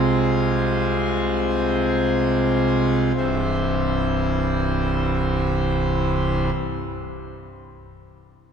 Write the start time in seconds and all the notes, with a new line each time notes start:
Already playing: C2 C3 G#3 C4 F4 G#4
3.16 C1 C2 G2 E3 G3 C4 E4 C5